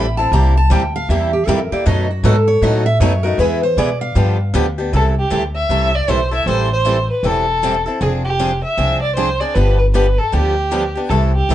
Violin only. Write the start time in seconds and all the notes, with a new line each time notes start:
4.96 A4
5.19 G4
5.32 G4
5.56 E5
5.95 D5
6.10 C5
6.34 E5
6.49 C5
6.73 C5
7.10 B4
7.26 A4
8.01 G#4
8.24 G4
8.64 E5
9.02 D5
9.15 C5
9.40 D5
9.54 B4
9.78 B4
9.93 B4
10.18 A4
10.33 G4
11.09 A4
11.35 G4